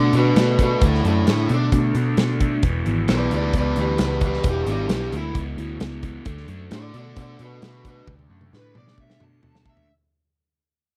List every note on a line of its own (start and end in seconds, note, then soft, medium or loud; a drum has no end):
0.00 0.11 D3 medium
0.00 0.12 A3 medium
0.00 0.13 D4 medium
0.00 0.13 A4 medium
0.00 0.14 D5 medium
0.13 0.32 B2 medium
0.13 0.35 D3 medium
0.13 0.35 A3 medium
0.13 0.36 D4 medium
0.13 0.36 F#4 medium
0.13 closed hi-hat medium
0.17 0.37 B4 medium
0.36 0.74 B2 medium
0.36 0.58 D3 medium
0.36 0.58 A3 loud
0.36 0.59 D4 medium
0.36 0.58 F#4 medium
0.36 0.60 B4 medium
0.36 snare loud
0.36 closed hi-hat medium
0.59 0.80 D3 medium
0.59 0.81 A3 medium
0.59 0.81 D4 medium
0.59 0.82 F#4 medium
0.59 kick medium
0.59 closed hi-hat medium
0.63 0.83 B4 medium
0.81 1.01 D2 medium
0.81 1.02 D3 medium
0.81 1.03 A3 medium
0.81 1.03 D4 loud
0.81 1.04 E4 medium
0.81 1.05 A4 medium
0.81 kick loud
0.81 closed hi-hat medium
0.94 snare soft
1.04 1.23 F#2 medium
1.04 1.25 D3 medium
1.04 1.26 A3 medium
1.04 1.26 D4 medium
1.04 1.27 E4 medium
1.04 1.28 A4 medium
1.04 closed hi-hat medium
1.27 1.46 A2 medium
1.27 1.49 D3 medium
1.27 1.49 A3 medium
1.27 1.49 D4 medium
1.27 1.50 E4 medium
1.27 1.51 A4 medium
1.27 snare loud
1.27 closed hi-hat medium
1.49 1.69 B2 medium
1.49 1.71 D3 medium
1.49 1.72 A3 loud
1.49 1.73 D4 loud
1.49 closed hi-hat medium
1.54 1.74 D4 medium
1.72 1.91 B2 medium
1.72 1.95 D3 medium
1.72 1.95 A3 medium
1.72 1.96 D4 medium
1.72 kick medium
1.72 closed hi-hat medium
1.95 2.14 B2 medium
1.95 2.17 D3 medium
1.95 2.17 A3 medium
1.95 2.18 D4 medium
1.95 closed hi-hat medium
2.17 2.64 B2 medium
2.17 2.39 D3 medium
2.17 2.40 A3 medium
2.17 2.40 D4 medium
2.17 snare medium
2.17 closed hi-hat medium
2.40 2.62 D3 medium
2.40 2.62 A3 medium
2.40 2.63 D4 medium
2.40 kick medium
2.40 closed hi-hat medium
2.63 2.82 E1 medium
2.63 2.85 E2 medium
2.63 2.85 B2 medium
2.63 2.86 E3 medium
2.63 kick loud
2.63 closed hi-hat medium
2.86 3.06 G#1 medium
2.86 3.08 E2 medium
2.86 3.08 B2 medium
2.86 3.09 E3 medium
2.86 closed hi-hat medium
3.08 3.28 B1 medium
3.08 3.31 E2 medium
3.08 3.31 B2 medium
3.08 3.32 E3 medium
3.08 3.32 B4 medium
3.08 3.32 D5 medium
3.08 snare loud
3.08 closed hi-hat medium
3.31 3.51 D2 medium
3.31 3.53 E2 medium
3.31 3.53 B2 medium
3.31 3.54 E3 medium
3.31 3.54 B4 medium
3.31 3.55 D5 medium
3.31 closed hi-hat medium
3.53 3.73 C#2 medium
3.53 3.76 E2 medium
3.53 3.77 B2 medium
3.53 3.77 E3 medium
3.53 kick medium
3.53 closed hi-hat medium
3.58 3.77 B4 medium
3.58 3.78 D5 medium
3.76 3.96 D2 medium
3.76 3.98 E2 medium
3.76 3.98 B2 medium
3.76 3.99 E3 medium
3.76 closed hi-hat medium
3.80 4.00 G4 medium
3.80 4.01 B4 medium
3.98 4.38 C#2 medium
3.98 4.20 E2 medium
3.98 4.21 B2 medium
3.98 4.22 E3 medium
3.98 snare loud
3.98 closed hi-hat medium
4.03 4.23 G4 medium
4.03 4.24 B4 medium
4.21 4.44 E2 medium
4.21 4.44 B2 medium
4.21 4.45 E3 medium
4.21 kick medium
4.21 closed hi-hat medium
4.25 4.45 G4 medium
4.25 4.46 B4 medium
4.33 snare soft
4.44 4.64 E1 medium
4.44 4.66 E2 medium
4.44 4.67 B2 loud
4.44 4.67 E3 medium
4.44 kick loud
4.44 closed hi-hat medium
4.48 4.68 D4 medium
4.48 4.69 G4 medium
4.66 4.86 G#1 medium
4.66 4.89 E2 medium
4.66 4.90 B2 medium
4.66 4.90 E3 medium
4.66 4.90 D4 medium
4.66 closed hi-hat medium
4.71 4.91 G4 medium
4.89 5.09 B1 medium
4.89 5.11 E2 medium
4.89 5.12 B2 medium
4.89 5.13 E3 medium
4.89 snare loud
4.89 closed hi-hat medium
4.94 5.14 D4 medium
4.94 5.15 G4 medium
5.12 5.32 D2 medium
5.12 5.34 E2 medium
5.12 5.35 B2 medium
5.12 5.35 E3 medium
5.12 closed hi-hat medium
5.17 5.37 E4 medium
5.35 5.55 C#2 medium
5.35 5.57 E2 medium
5.35 5.57 B2 medium
5.35 5.57 E3 medium
5.35 kick medium
5.35 closed hi-hat medium
5.57 5.77 D2 medium
5.57 5.79 E2 medium
5.57 5.79 B2 medium
5.57 5.80 E3 medium
5.57 closed hi-hat medium
5.80 6.19 C#2 medium
5.80 6.02 E2 medium
5.80 6.03 B2 medium
5.80 6.03 E3 loud
5.80 snare loud
5.80 closed hi-hat medium
6.03 6.25 E2 medium
6.03 6.25 B2 medium
6.03 6.26 E3 medium
6.03 kick medium
6.03 closed hi-hat medium
6.25 6.45 D2 medium
6.25 6.48 D3 medium
6.25 6.49 A3 medium
6.25 6.49 D4 loud
6.25 kick loud
6.25 closed hi-hat medium
6.37 snare soft
6.48 6.68 F#2 medium
6.48 6.70 D3 medium
6.48 6.71 A3 medium
6.48 6.71 D4 medium
6.48 closed hi-hat medium
6.71 6.91 A2 medium
6.71 6.93 D3 medium
6.71 6.93 A3 medium
6.71 6.94 D4 medium
6.71 6.96 A4 medium
6.71 6.95 D5 medium
6.71 snare loud
6.71 closed hi-hat medium
6.93 7.13 B2 medium
6.93 7.16 D3 medium
6.93 7.16 A3 medium
6.93 7.17 D4 medium
6.93 7.17 A4 medium
6.93 closed hi-hat medium
6.98 7.18 D5 medium
7.16 7.36 B2 medium
7.16 7.39 D3 medium
7.16 7.40 A3 medium
7.16 7.40 D4 medium
7.16 7.40 A4 medium
7.16 kick medium
7.16 closed hi-hat medium
7.20 7.41 D5 medium
7.39 7.59 B2 medium
7.39 7.62 D3 medium
7.39 7.62 A3 medium
7.39 7.63 D4 medium
7.39 7.63 F#4 medium
7.39 7.64 B4 medium
7.39 closed hi-hat medium
7.62 8.01 B2 medium
7.62 7.84 D3 medium
7.62 7.85 A3 medium
7.62 7.85 D4 loud
7.62 7.85 F#4 medium
7.62 7.86 B4 medium
7.62 snare loud
7.62 closed hi-hat medium
7.85 8.06 D3 medium
7.85 8.07 A3 medium
7.85 8.07 D4 medium
7.85 8.08 F#4 medium
7.85 8.09 B4 medium
7.85 kick medium
7.85 closed hi-hat medium
8.07 8.27 D2 medium
8.07 8.28 D3 medium
8.07 8.29 A3 medium
8.07 8.29 D4 medium
8.07 kick loud
8.07 high tom medium
8.19 high tom medium
8.29 8.49 F#2 medium
8.29 8.51 D3 medium
8.29 8.52 A3 medium
8.29 8.53 D4 medium
8.41 high tom medium
8.53 8.72 A2 medium
8.53 8.73 D3 medium
8.53 8.73 A3 medium
8.53 8.74 D4 medium
8.53 8.77 B4 medium
8.53 snare medium
8.74 8.95 B2 medium
8.74 8.96 D3 medium
8.74 8.97 A3 medium
8.74 8.97 D4 medium
8.74 8.99 D5 medium
8.74 mid tom medium
8.88 snare medium
8.97 9.17 B2 medium
8.97 9.19 D3 medium
8.97 9.19 A3 medium
8.97 9.20 D4 medium
8.97 9.22 E5 medium
8.97 kick medium
9.10 snare medium
9.20 9.40 B2 medium
9.20 9.40 D3 medium
9.20 9.41 A3 medium
9.20 9.41 D4 medium
9.20 9.67 A5 medium
9.20 mid tom medium
9.42 9.82 B2 medium
9.42 9.64 D3 medium
9.42 9.64 A3 medium
9.42 9.64 D4 loud
9.42 floor tom medium
9.55 snare medium
9.65 9.87 D3 medium
9.65 9.87 A3 medium
9.65 9.88 D4 medium
9.65 kick medium
9.69 9.90 E5 medium
9.77 floor tom medium